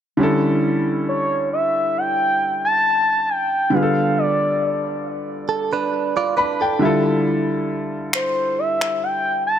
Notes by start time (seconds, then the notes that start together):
0.17 D3 G3 C#4
0.22 E4 A4
1.09 C#5
1.53 E5
1.98 G5
2.65 A5
3.30 G5
3.70 D3 G3 B3 F5
3.75 F4 G#4
3.83 A4
4.18 D5
5.49 A4
5.73 D4 B4
6.17 F4 D5
6.37 D4 B4 B5
6.61 A4 G5
6.79 D3 G3 E4 E5
6.84 F4 A4
8.13 C5, finger snap
8.59 E5
8.81 finger snap
9.03 G5
9.47 A5